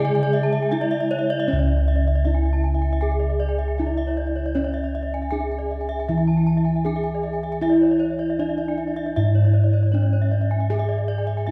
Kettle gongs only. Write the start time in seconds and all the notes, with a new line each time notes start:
Already playing: C#3
0.71 D4
1.48 C#4
1.53 C#2
2.25 D4
3.80 D4
4.55 C#4
5.32 D4
6.09 E3
6.86 D4
7.61 E4
8.39 D4
9.17 G#2
9.94 D4
10.70 G#4
11.48 D4